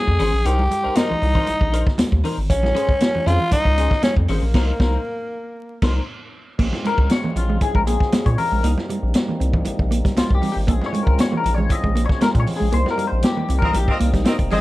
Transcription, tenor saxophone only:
Already playing: G#4
0.46 G4
0.96 D#4
2.50 C#4
3.27 F4
3.52 D#4
4.04 C#4
4.29 A#3

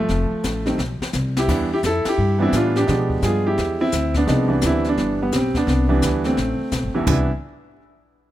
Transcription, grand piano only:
Already playing: A3
0.00 F3
0.66 D#3 G3 A3 C4
1.38 E4 G4
1.48 E3 G3 B3 D4
1.74 E4 G4
1.86 E4 A4
2.08 E4 G4
2.39 E3 G3 B3 D4 E4
2.43 C4
2.56 D4 F4
2.77 D4 G4
2.87 F3 G#3 B3 D4
3.24 F4 G#4
3.47 E4 G4
3.81 C4 E4
4.17 B3 D4
4.26 F3 G#3 C4 D#4
4.48 E3 G3 B3 D4
4.66 C4 E4
4.88 B3 D4
5.22 G3 B3
5.36 G3 C4
5.57 B3 D4
5.89 E3 G3 B3 D4
6.26 A3 C4
6.94 C2 E3 G3 B3 E4
7.08 E3 G3 B3 D4 E4

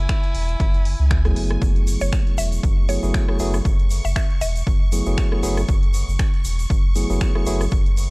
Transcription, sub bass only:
0.35 E1
0.60 F#1
1.00 C#2
1.36 F#1
1.62 F#1
2.01 F#1
2.38 E1
2.63 F#1
3.03 F#1
3.40 F#1
3.65 F#1
4.05 F#1
4.41 E1
4.67 F#1
5.07 F#1
5.43 F#1
5.69 F#1
6.08 F#1
6.45 E1
6.70 F#1
7.10 F#1
7.46 F#1
7.72 F#1

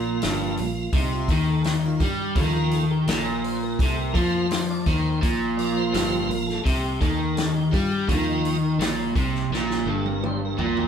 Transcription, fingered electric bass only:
Already playing: A#1
0.24 G1
0.59 A#1
0.93 C2
1.28 D#2
2.00 G2
2.36 D#2
3.07 A#1
3.79 C2
4.15 F2
4.86 D#2
5.23 A#1
5.94 G1
6.29 A#1
6.65 C2
7.01 D#2
7.73 G2
8.08 D#2
8.79 A#1
9.16 C2
9.50 A#1
9.85 G1
10.58 A#1

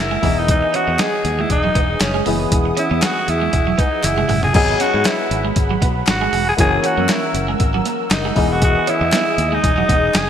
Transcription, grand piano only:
Already playing: E3 A#3 C#4 F#4
0.22 E3 B3 D#4 G#4
2.25 E3 B3 G#4 D#5
4.53 F#3 B3 G#4 D#5
6.57 E3 A#3 C#4 F#4
8.35 E3 B3 G#4 D#5

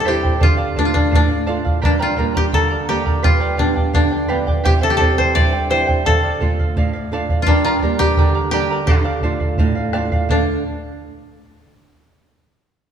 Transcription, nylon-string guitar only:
Already playing: G2
0.08 G3 C4 E4
0.43 D3
0.78 A3 D4 F4
1.15 A2
1.48 A3 D4 F4
1.84 G2
2.19 G3 A#3 D4
2.54 D3
2.89 G3 A#3 D4
3.25 G2
3.59 F3 G3 B3
3.94 D3
4.30 F3 G3 B3
4.65 C3
5.00 G3 C4 E4
5.36 G2
5.70 G3 C4 E4
6.07 D3
6.41 A3 D4 F4
6.77 A2
7.12 A3 D4 F4
7.48 G2
7.83 G3 A#3 D4
8.19 D3
8.53 G3 A#3 D4
8.89 D3
9.24 A3 D4 F4
9.60 A2
9.95 A3 D4 F4
10.29 D3 A3

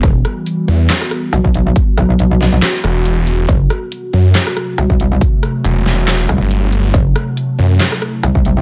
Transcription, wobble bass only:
0.03 E1
1.33 B1
1.97 B1
3.49 F#1
4.78 C2
6.29 C2
6.94 F#1
8.23 C2

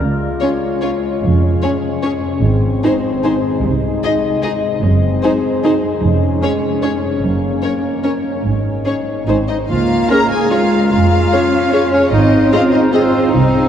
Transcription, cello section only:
0.00 C#3
1.22 F2
2.43 G#2
3.64 C3
4.84 F#2
6.03 F2
7.23 F#2
8.44 G#2
9.28 G#2
9.69 A#3
10.51 G#3
11.32 C#4
12.13 C4
12.94 F4
13.34 D#4

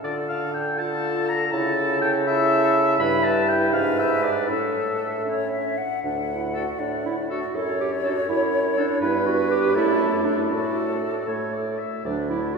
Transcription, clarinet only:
0.05 F4
0.80 F4
1.53 E4
2.27 E4
3.00 E4
3.73 D4
4.50 D4
5.27 C#4
6.04 D4
6.29 E4
6.55 F#4
6.80 D4
7.06 E4
7.30 F#4
7.55 A4
7.80 G4
8.04 F#4
8.29 E4
8.78 D4
9.02 E4
9.26 F#4
9.51 G4
9.76 E4
10.25 D4
10.52 F#4
12.05 D4
12.30 E4
12.55 F#4

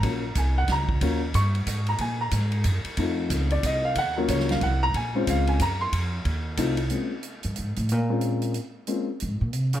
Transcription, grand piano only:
Already playing: A#5
0.03 F#3 A#3 C#4 F4
0.38 G#5
0.58 F#5
0.72 A#5
1.02 F#3 A#3 C#4 F4
1.35 C#6
1.89 A#5
2.01 G#5
2.21 A#5
2.98 A3 C4 D#4 F4
3.52 D5
3.66 D#5
3.85 F5
3.98 F#5
4.17 F#3 A#3 C#4 F4 A#4
4.30 C#5
4.51 F5
4.63 F#5
4.83 A#5
4.96 G#5
5.15 G#3 C4 C#4 F4 C5
5.30 F5
5.49 G#5
5.62 A#5
5.81 C6
6.58 A3 C4 D#4 F4
6.90 G#3 A#3 C4 C#4 F4
8.10 G#3 A#3 C4 C#4 F4
8.88 G#3 A#3 C4 C#4 F4

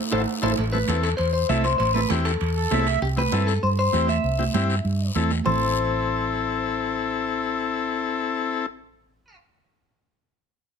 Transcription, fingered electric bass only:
0.12 A1
0.43 A1
0.58 A1
0.88 E2
1.19 E2
1.49 C2
1.79 A1
2.11 E2
2.41 E2
2.71 C2
3.02 C2
3.32 G2
3.63 G2
3.93 E2
4.24 C2
4.54 G2
4.84 G2
5.15 E2
5.46 A1

